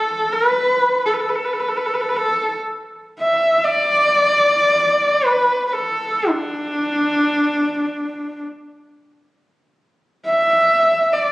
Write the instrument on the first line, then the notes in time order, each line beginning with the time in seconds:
horsehead fiddle
Already playing: A4
0.33 B4
1.05 A4
1.13 B4
1.20 A4
1.29 B4
1.35 A4
1.45 B4
1.53 A4
1.60 B4
1.68 A4
1.77 B4
1.86 A4
1.94 B4
2.01 A4
2.09 B4
2.16 A4
3.21 E5
3.65 D5
5.26 B4
5.67 B4
5.74 A4
6.29 D4
10.26 E5
11.13 D5